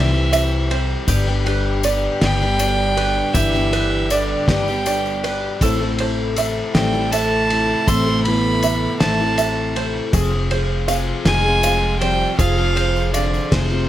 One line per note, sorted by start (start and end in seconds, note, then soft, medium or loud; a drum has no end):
0.00 0.94 C2 medium
0.00 0.13 C3 medium
0.00 0.81 E3 medium
0.00 1.05 E3 medium
0.00 0.14 G3 medium
0.00 5.58 G3 medium
0.00 0.14 C4 medium
0.00 1.05 C4 medium
0.00 0.13 E4 medium
0.00 0.12 G4 medium
0.00 0.33 G4 medium
0.00 1.05 G4 medium
0.00 0.70 C5 medium
0.00 0.31 E5 medium
0.00 0.81 E5 loud
0.13 0.32 C4 soft
0.13 0.33 E4 medium
0.13 0.32 G4 medium
0.32 0.69 G3 medium
0.32 0.70 C4 medium
0.32 0.71 E4 medium
0.32 0.71 G4 medium
0.32 1.08 E5 medium
0.32 ride medium
0.32 tambourine loud
0.70 1.08 G3 medium
0.70 1.09 C4 medium
0.70 1.09 E4 medium
0.70 1.09 G4 medium
0.70 1.08 C5 medium
0.70 ride medium
1.08 2.07 G1 loud
1.08 1.27 G2 medium
1.08 5.57 D3 medium
1.08 1.27 D3 loud
1.08 1.27 G3 loud
1.08 5.57 B3 medium
1.08 1.28 B3 loud
1.08 1.27 D4 loud
1.08 3.32 G4 medium
1.08 2.59 G4 medium
1.08 1.26 G4 medium
1.08 kick loud
1.08 ride medium
1.08 tambourine loud
1.27 1.45 G3 medium
1.27 1.45 B3 medium
1.27 1.47 D4 medium
1.27 1.46 G4 medium
1.46 1.83 G3 medium
1.46 1.83 B3 medium
1.46 1.84 D4 medium
1.46 1.85 G4 medium
1.46 2.96 B4 medium
1.46 ride medium
1.83 2.22 G3 medium
1.83 2.22 B3 medium
1.83 2.22 D4 medium
1.83 2.23 G4 medium
1.83 2.58 D5 medium
1.83 ride medium
1.83 tambourine loud
2.21 3.20 G1 loud
2.21 2.41 G2 medium
2.21 2.41 D3 medium
2.21 2.41 G3 medium
2.21 3.37 G3 loud
2.21 2.41 B3 medium
2.21 2.41 D4 loud
2.21 2.40 G4 medium
2.21 3.35 G5 loud
2.21 snare loud
2.21 ride medium
2.21 tambourine soft
2.42 2.59 G3 soft
2.42 2.60 B3 medium
2.42 2.60 D4 medium
2.42 2.60 G4 medium
2.59 2.96 G3 medium
2.59 2.97 B3 medium
2.59 2.98 D4 medium
2.59 2.99 G4 medium
2.59 4.10 D5 medium
2.59 ride medium
2.59 tambourine loud
2.97 3.35 G3 medium
2.97 3.35 B3 medium
2.97 3.36 D4 medium
2.97 3.36 G4 medium
2.97 3.71 B4 medium
2.97 ride medium
3.33 4.33 G1 loud
3.33 3.54 G2 medium
3.33 3.54 D3 medium
3.33 4.13 E3 medium
3.33 3.54 G3 medium
3.33 3.54 B3 medium
3.33 3.54 D4 medium
3.33 5.59 G4 loud
3.33 4.86 G4 medium
3.33 4.13 E5 loud
3.33 kick loud
3.33 ride medium
3.33 tambourine loud
3.37 3.53 G4 loud
3.54 3.72 G3 soft
3.54 3.72 B3 soft
3.54 3.73 D4 medium
3.54 3.73 G4 medium
3.54 tambourine soft
3.73 4.09 G3 medium
3.73 4.10 B3 medium
3.73 4.11 D4 medium
3.73 4.12 G4 medium
3.73 5.23 B4 medium
3.73 ride medium
3.73 tambourine soft
4.10 4.52 D3 medium
4.10 4.48 G3 medium
4.10 4.48 B3 medium
4.10 4.48 D4 medium
4.10 4.49 G4 medium
4.10 4.85 D5 medium
4.10 4.48 D5 medium
4.10 ride medium
4.10 tambourine medium
4.46 5.47 G1 medium
4.46 4.67 G2 medium
4.46 4.67 D3 medium
4.46 4.67 G3 medium
4.46 4.68 B3 medium
4.46 4.68 D4 medium
4.46 4.67 G4 medium
4.46 5.32 G5 loud
4.46 kick medium
4.46 snare loud
4.46 ride medium
4.46 tambourine soft
4.51 5.34 G3 medium
4.68 4.85 G3 medium
4.68 4.87 B3 medium
4.68 4.87 D4 medium
4.68 4.87 G4 medium
4.68 tambourine soft
4.86 5.23 G3 medium
4.86 5.24 B3 medium
4.86 5.25 D4 medium
4.86 5.25 G4 medium
4.86 5.62 D5 medium
4.86 ride medium
4.86 tambourine medium
5.06 tambourine soft
5.24 5.62 G3 medium
5.24 5.62 B3 medium
5.24 5.62 D4 medium
5.24 5.63 G4 medium
5.24 5.61 B4 medium
5.24 ride medium
5.24 tambourine soft
5.61 6.60 A1 loud
5.61 5.81 A2 medium
5.61 13.89 C3 medium
5.61 10.10 E3 medium
5.61 5.81 E3 loud
5.61 10.09 A3 medium
5.61 5.81 A3 medium
5.61 5.82 C4 loud
5.61 10.09 E4 medium
5.61 5.80 E4 loud
5.61 7.12 A4 medium
5.61 5.79 A4 loud
5.61 kick loud
5.61 ride medium
5.61 tambourine medium
5.80 5.98 A3 medium
5.80 6.00 C4 medium
5.80 6.00 E4 medium
5.80 5.99 A4 medium
5.98 6.36 A3 medium
5.98 6.37 C4 medium
5.98 6.38 E4 medium
5.98 6.38 A4 medium
5.98 7.50 C5 medium
5.98 ride medium
6.36 6.75 A3 medium
6.36 6.75 C4 medium
6.36 6.75 E4 medium
6.36 6.75 A4 medium
6.36 7.12 E5 medium
6.36 ride medium
6.36 tambourine medium
6.74 7.73 A1 medium
6.74 6.93 A2 medium
6.74 6.94 E3 medium
6.74 7.15 G3 medium
6.74 6.94 A3 medium
6.74 6.94 C4 medium
6.74 6.94 E4 medium
6.74 6.92 A4 medium
6.74 7.14 G5 loud
6.74 snare loud
6.74 ride medium
6.74 tambourine soft
6.94 7.11 A3 soft
6.94 7.12 C4 medium
6.94 7.13 E4 medium
6.94 7.12 A4 medium
7.12 7.49 A3 medium
7.12 7.92 A3 medium
7.12 7.50 C4 medium
7.12 7.51 E4 medium
7.12 7.51 A4 medium
7.12 8.62 E5 medium
7.12 7.88 A5 loud
7.12 ride medium
7.12 tambourine loud
7.50 7.87 A3 medium
7.50 7.88 C4 medium
7.50 7.88 E4 medium
7.50 7.88 A4 medium
7.50 ride medium
7.87 8.86 A1 loud
7.87 8.06 A2 medium
7.87 8.07 E3 medium
7.87 8.07 A3 medium
7.87 8.07 C4 medium
7.87 8.26 C4 loud
7.87 8.07 E4 medium
7.87 9.38 A4 medium
7.87 8.05 A4 medium
7.87 8.22 C6 loud
7.87 kick loud
7.87 ride medium
7.87 tambourine loud
8.07 8.25 A3 soft
8.07 8.26 C4 medium
8.07 8.26 E4 soft
8.07 8.25 A4 medium
8.23 8.63 A3 medium
8.23 8.97 B3 loud
8.23 8.95 B5 loud
8.23 ride medium
8.28 8.64 E4 medium
8.28 8.64 A4 medium
8.63 9.01 A3 medium
8.63 9.01 E4 medium
8.63 9.37 E5 medium
8.63 ride medium
8.63 tambourine medium
8.67 9.02 A4 medium
9.00 9.99 A1 medium
9.00 9.20 A2 medium
9.00 9.20 E3 medium
9.00 9.82 A3 medium
9.00 9.20 A3 medium
9.00 9.20 C4 medium
9.00 9.20 E4 medium
9.00 9.19 A4 medium
9.00 9.81 A5 loud
9.00 snare loud
9.00 ride medium
9.00 tambourine soft
9.20 9.38 A3 medium
9.20 9.39 C4 medium
9.20 9.39 E4 medium
9.20 9.38 A4 medium
9.38 9.74 A3 medium
9.38 9.75 C4 medium
9.38 9.76 E4 medium
9.38 10.13 E5 medium
9.38 ride medium
9.38 tambourine loud
9.42 9.76 A4 medium
9.75 10.13 A3 medium
9.75 10.13 C4 medium
9.75 10.14 E4 medium
9.75 10.14 A4 medium
9.75 10.14 C5 medium
9.75 ride medium
10.13 11.11 F1 loud
10.13 10.32 F3 medium
10.13 13.89 F3 medium
10.13 13.89 C4 medium
10.13 10.32 C4 loud
10.13 13.89 F4 medium
10.13 10.33 F4 loud
10.13 11.64 G#4 medium
10.13 10.32 G#4 medium
10.13 kick loud
10.13 ride medium
10.13 tambourine medium
10.33 10.51 C4 medium
10.33 10.52 F4 medium
10.33 10.51 G#4 medium
10.51 10.87 F3 medium
10.51 10.88 C4 medium
10.51 10.89 F4 medium
10.51 10.90 G#4 medium
10.51 12.00 C5 medium
10.51 ride medium
10.88 11.26 F3 medium
10.88 11.26 C4 medium
10.88 11.27 F4 medium
10.88 11.27 G#4 medium
10.88 11.62 F5 medium
10.88 ride medium
10.88 tambourine medium
11.25 12.24 F1 loud
11.25 11.45 F3 medium
11.25 11.97 G#3 loud
11.25 11.45 C4 medium
11.25 11.46 F4 medium
11.25 11.45 G#4 loud
11.25 11.97 G#5 loud
11.25 snare loud
11.25 ride medium
11.25 tambourine soft
11.46 11.64 C4 soft
11.46 11.65 F4 medium
11.46 11.64 G#4 medium
11.63 12.00 F3 medium
11.63 12.01 C4 medium
11.63 12.02 F4 medium
11.63 12.03 G#4 medium
11.63 13.13 F5 medium
11.63 ride medium
11.63 tambourine loud
11.99 12.38 F3 medium
11.99 12.36 G3 medium
11.99 12.38 C4 medium
11.99 12.75 C5 medium
11.99 12.35 G5 loud
11.99 ride medium
12.03 12.39 F4 medium
12.37 13.37 F1 loud
12.37 13.09 F3 loud
12.37 12.58 F3 medium
12.37 12.58 C4 medium
12.37 12.58 F4 medium
12.37 13.89 G#4 medium
12.37 12.56 G#4 medium
12.37 13.10 F5 loud
12.37 kick loud
12.37 ride medium
12.37 tambourine loud
12.57 12.76 C4 soft
12.57 12.76 F4 medium
12.57 12.76 G#4 medium
12.76 13.12 F3 medium
12.76 13.13 C4 medium
12.76 13.14 F4 medium
12.76 13.15 G#4 medium
12.76 13.89 C5 medium
12.76 ride medium
12.76 tambourine soft
12.96 tambourine soft
13.13 13.53 D3 medium
13.13 13.50 F3 medium
13.13 13.51 C4 medium
13.13 13.52 F4 medium
13.13 13.52 G#4 medium
13.13 13.54 D5 medium
13.13 13.89 F5 medium
13.13 ride medium
13.13 tambourine medium
13.34 tambourine soft
13.51 13.89 F1 medium
13.51 13.89 C3 medium
13.51 13.70 F3 medium
13.51 13.71 C4 medium
13.51 13.71 F4 medium
13.51 13.69 G#4 medium
13.51 13.89 C5 medium
13.51 kick medium
13.51 snare loud
13.51 ride loud
13.70 13.89 C4 soft
13.70 13.89 F4 medium
13.70 13.89 G#4 medium